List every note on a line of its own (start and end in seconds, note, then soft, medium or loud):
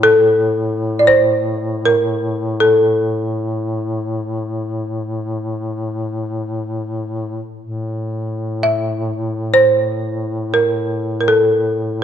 0.00 7.43 A2 soft
0.00 1.03 A4 medium
0.99 1.07 D5 soft
1.07 1.87 C5 medium
1.85 2.56 A#4 medium
2.60 5.53 A4 medium
7.60 12.04 A2 soft
8.63 9.55 E5 medium
9.54 10.57 C5 medium
10.54 11.19 A#4 medium
11.21 11.29 A#4 soft
11.28 12.04 A4 medium